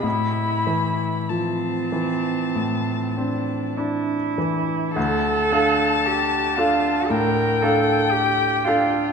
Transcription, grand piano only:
X:1
M:4/4
L:1/8
Q:1/4=54
K:Am
V:1 name="Grand piano"
A,, E, F, E, A,, C D E, | [K:Dm] D,, [DAf]2 [DAf] A,, [DAf]2 [DAf] |]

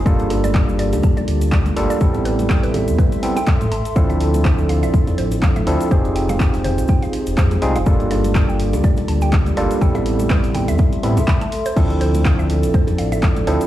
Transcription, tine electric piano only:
X:1
M:4/4
L:1/8
Q:"Swing 16ths" 1/4=123
K:Dm
V:1 name="Tine electric piano"
[G,B,DFA]6- [G,B,DFA] [G,B,DFA] | [G,=B,CEA]4- [G,B,CEA] [G,B,CEA] z2 | [F,CDEA]6- [F,CDEA] [F,CDEA] | [C_EFG_A]6- [CEFGA] [G,CEFA] |
[G,B,DFA]6- [G,B,DFA] [G,B,DFA] | [G,=B,CEA]4- [G,B,CEA] [G,B,CEA] z2 | [F,CDEA]6- [F,CDEA] [F,CDEA] |]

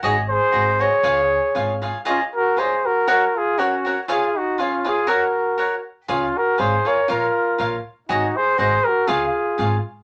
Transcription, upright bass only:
X:1
M:2/4
L:1/8
Q:"Swing" 1/4=120
K:Db
V:1 name="Upright bass" clef=bass
A,,,2 A,,,2 | D,,2 A,,,2 | z4 | z4 |
z4 | z4 | D,, z A,,, z | B,,, z B,,, z |
A,,, z A,,, z | D,, z A,,, z |]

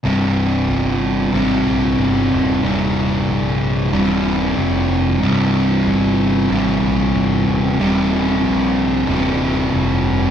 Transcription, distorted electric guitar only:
X:1
M:4/4
L:1/8
Q:1/4=93
K:Cm
V:1 name="Distorted electric guitar" clef=bass
[C,,G,,C,]4 [C,,G,,C,]4 | [C,,G,,C,]4 [C,,G,,C,]4 | [C,,G,,C,]4 [C,,G,,C,]4 | [C,,G,,C,]4 [C,,G,,C,]4 |]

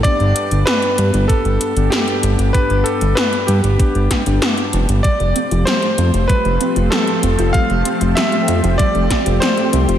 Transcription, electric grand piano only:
X:1
M:4/4
L:1/8
Q:1/4=96
K:Gmix
V:1 name="Electric grand piano"
d2 B2 A2 G2 | B A B G3 z2 | d2 c2 B2 A2 | f2 e2 d2 c2 |]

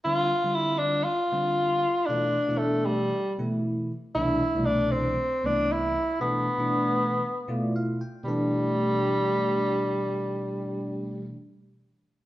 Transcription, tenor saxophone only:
X:1
M:4/4
L:1/8
Q:1/4=117
K:Gmix
V:1 name="Tenor saxophone"
F2 E D F4 | D2 A, G,2 z3 | E2 D C2 D E2 | B,6 z2 |
G,8- | G,8 |]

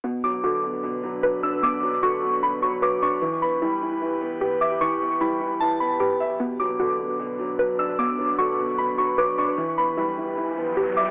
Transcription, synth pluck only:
X:1
M:4/4
L:1/8
Q:1/4=151
K:Bm
V:1 name="Synth pluck"
B,2 F4 B2 | B,2 F4 B2 | E,2 E4 G2 | E,2 E4 G2 |
B,2 F4 B2 | B,2 F4 B2 | E,2 E4 G2 |]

